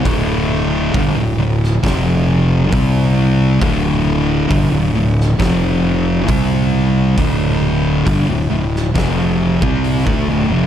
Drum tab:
HH |o---o---o---o---|o---o---o---o---|o---o---o---o---|
SD |-------oo-------|-------oo-------|-------oo-------|
BD |o---o---o---o---|o---o---o---o---|o---o---o--o-o--|